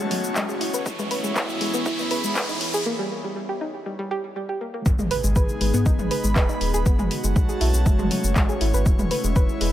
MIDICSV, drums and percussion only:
0, 0, Header, 1, 2, 480
1, 0, Start_track
1, 0, Tempo, 500000
1, 826, Time_signature, 4, 2, 24, 8
1, 9334, End_track
2, 0, Start_track
2, 0, Title_t, "Drums"
2, 106, Note_on_c, 9, 46, 103
2, 202, Note_off_c, 9, 46, 0
2, 230, Note_on_c, 9, 82, 66
2, 326, Note_off_c, 9, 82, 0
2, 344, Note_on_c, 9, 36, 123
2, 345, Note_on_c, 9, 39, 107
2, 345, Note_on_c, 9, 82, 56
2, 440, Note_off_c, 9, 36, 0
2, 441, Note_off_c, 9, 39, 0
2, 441, Note_off_c, 9, 82, 0
2, 470, Note_on_c, 9, 82, 33
2, 566, Note_off_c, 9, 82, 0
2, 585, Note_on_c, 9, 46, 97
2, 681, Note_off_c, 9, 46, 0
2, 709, Note_on_c, 9, 82, 66
2, 805, Note_off_c, 9, 82, 0
2, 824, Note_on_c, 9, 36, 122
2, 825, Note_on_c, 9, 82, 55
2, 920, Note_off_c, 9, 36, 0
2, 921, Note_off_c, 9, 82, 0
2, 950, Note_on_c, 9, 45, 78
2, 950, Note_on_c, 9, 82, 33
2, 1046, Note_off_c, 9, 45, 0
2, 1046, Note_off_c, 9, 82, 0
2, 1065, Note_on_c, 9, 46, 105
2, 1161, Note_off_c, 9, 46, 0
2, 1190, Note_on_c, 9, 82, 63
2, 1286, Note_off_c, 9, 82, 0
2, 1304, Note_on_c, 9, 36, 123
2, 1305, Note_on_c, 9, 39, 108
2, 1305, Note_on_c, 9, 82, 52
2, 1400, Note_off_c, 9, 36, 0
2, 1401, Note_off_c, 9, 39, 0
2, 1401, Note_off_c, 9, 82, 0
2, 1430, Note_on_c, 9, 82, 31
2, 1526, Note_off_c, 9, 82, 0
2, 1544, Note_on_c, 9, 46, 97
2, 1640, Note_off_c, 9, 46, 0
2, 1669, Note_on_c, 9, 82, 64
2, 1765, Note_off_c, 9, 82, 0
2, 1784, Note_on_c, 9, 36, 122
2, 1784, Note_on_c, 9, 82, 56
2, 1880, Note_off_c, 9, 36, 0
2, 1880, Note_off_c, 9, 82, 0
2, 1908, Note_on_c, 9, 45, 78
2, 1908, Note_on_c, 9, 82, 32
2, 2004, Note_off_c, 9, 45, 0
2, 2004, Note_off_c, 9, 82, 0
2, 2024, Note_on_c, 9, 46, 110
2, 2120, Note_off_c, 9, 46, 0
2, 2148, Note_on_c, 9, 82, 63
2, 2244, Note_off_c, 9, 82, 0
2, 2264, Note_on_c, 9, 36, 127
2, 2264, Note_on_c, 9, 39, 108
2, 2264, Note_on_c, 9, 82, 55
2, 2360, Note_off_c, 9, 36, 0
2, 2360, Note_off_c, 9, 39, 0
2, 2360, Note_off_c, 9, 82, 0
2, 2389, Note_on_c, 9, 82, 32
2, 2485, Note_off_c, 9, 82, 0
2, 2504, Note_on_c, 9, 46, 99
2, 2600, Note_off_c, 9, 46, 0
2, 2629, Note_on_c, 9, 82, 65
2, 2725, Note_off_c, 9, 82, 0
2, 4664, Note_on_c, 9, 36, 119
2, 4665, Note_on_c, 9, 82, 58
2, 4760, Note_off_c, 9, 36, 0
2, 4761, Note_off_c, 9, 82, 0
2, 4789, Note_on_c, 9, 45, 77
2, 4789, Note_on_c, 9, 82, 37
2, 4885, Note_off_c, 9, 45, 0
2, 4885, Note_off_c, 9, 82, 0
2, 4904, Note_on_c, 9, 46, 102
2, 5000, Note_off_c, 9, 46, 0
2, 5029, Note_on_c, 9, 82, 70
2, 5125, Note_off_c, 9, 82, 0
2, 5144, Note_on_c, 9, 36, 121
2, 5144, Note_on_c, 9, 82, 59
2, 5240, Note_off_c, 9, 36, 0
2, 5240, Note_off_c, 9, 82, 0
2, 5269, Note_on_c, 9, 82, 34
2, 5365, Note_off_c, 9, 82, 0
2, 5384, Note_on_c, 9, 46, 98
2, 5480, Note_off_c, 9, 46, 0
2, 5509, Note_on_c, 9, 82, 70
2, 5605, Note_off_c, 9, 82, 0
2, 5625, Note_on_c, 9, 36, 124
2, 5625, Note_on_c, 9, 82, 58
2, 5721, Note_off_c, 9, 36, 0
2, 5721, Note_off_c, 9, 82, 0
2, 5750, Note_on_c, 9, 45, 73
2, 5750, Note_on_c, 9, 82, 35
2, 5846, Note_off_c, 9, 45, 0
2, 5846, Note_off_c, 9, 82, 0
2, 5865, Note_on_c, 9, 46, 105
2, 5961, Note_off_c, 9, 46, 0
2, 5990, Note_on_c, 9, 82, 70
2, 6086, Note_off_c, 9, 82, 0
2, 6105, Note_on_c, 9, 36, 122
2, 6105, Note_on_c, 9, 39, 126
2, 6105, Note_on_c, 9, 82, 57
2, 6201, Note_off_c, 9, 36, 0
2, 6201, Note_off_c, 9, 39, 0
2, 6201, Note_off_c, 9, 82, 0
2, 6230, Note_on_c, 9, 82, 36
2, 6326, Note_off_c, 9, 82, 0
2, 6346, Note_on_c, 9, 46, 91
2, 6442, Note_off_c, 9, 46, 0
2, 6470, Note_on_c, 9, 82, 72
2, 6566, Note_off_c, 9, 82, 0
2, 6585, Note_on_c, 9, 36, 124
2, 6585, Note_on_c, 9, 82, 58
2, 6681, Note_off_c, 9, 36, 0
2, 6681, Note_off_c, 9, 82, 0
2, 6710, Note_on_c, 9, 45, 76
2, 6710, Note_on_c, 9, 82, 35
2, 6806, Note_off_c, 9, 45, 0
2, 6806, Note_off_c, 9, 82, 0
2, 6825, Note_on_c, 9, 46, 104
2, 6921, Note_off_c, 9, 46, 0
2, 6950, Note_on_c, 9, 82, 70
2, 7046, Note_off_c, 9, 82, 0
2, 7065, Note_on_c, 9, 36, 122
2, 7065, Note_on_c, 9, 82, 56
2, 7161, Note_off_c, 9, 36, 0
2, 7161, Note_off_c, 9, 82, 0
2, 7190, Note_on_c, 9, 82, 33
2, 7286, Note_off_c, 9, 82, 0
2, 7305, Note_on_c, 9, 46, 98
2, 7401, Note_off_c, 9, 46, 0
2, 7430, Note_on_c, 9, 82, 68
2, 7526, Note_off_c, 9, 82, 0
2, 7545, Note_on_c, 9, 36, 122
2, 7545, Note_on_c, 9, 82, 56
2, 7641, Note_off_c, 9, 36, 0
2, 7641, Note_off_c, 9, 82, 0
2, 7670, Note_on_c, 9, 45, 75
2, 7670, Note_on_c, 9, 82, 33
2, 7766, Note_off_c, 9, 45, 0
2, 7766, Note_off_c, 9, 82, 0
2, 7785, Note_on_c, 9, 46, 112
2, 7881, Note_off_c, 9, 46, 0
2, 7910, Note_on_c, 9, 82, 67
2, 8006, Note_off_c, 9, 82, 0
2, 8025, Note_on_c, 9, 36, 122
2, 8025, Note_on_c, 9, 39, 127
2, 8025, Note_on_c, 9, 82, 57
2, 8121, Note_off_c, 9, 36, 0
2, 8121, Note_off_c, 9, 39, 0
2, 8121, Note_off_c, 9, 82, 0
2, 8150, Note_on_c, 9, 82, 35
2, 8246, Note_off_c, 9, 82, 0
2, 8265, Note_on_c, 9, 46, 101
2, 8361, Note_off_c, 9, 46, 0
2, 8390, Note_on_c, 9, 82, 69
2, 8486, Note_off_c, 9, 82, 0
2, 8505, Note_on_c, 9, 36, 126
2, 8506, Note_on_c, 9, 82, 56
2, 8601, Note_off_c, 9, 36, 0
2, 8602, Note_off_c, 9, 82, 0
2, 8630, Note_on_c, 9, 45, 81
2, 8630, Note_on_c, 9, 82, 34
2, 8726, Note_off_c, 9, 45, 0
2, 8726, Note_off_c, 9, 82, 0
2, 8745, Note_on_c, 9, 46, 109
2, 8841, Note_off_c, 9, 46, 0
2, 8869, Note_on_c, 9, 82, 67
2, 8965, Note_off_c, 9, 82, 0
2, 8984, Note_on_c, 9, 82, 54
2, 8985, Note_on_c, 9, 36, 127
2, 9080, Note_off_c, 9, 82, 0
2, 9081, Note_off_c, 9, 36, 0
2, 9110, Note_on_c, 9, 82, 31
2, 9206, Note_off_c, 9, 82, 0
2, 9225, Note_on_c, 9, 46, 101
2, 9321, Note_off_c, 9, 46, 0
2, 9334, End_track
0, 0, End_of_file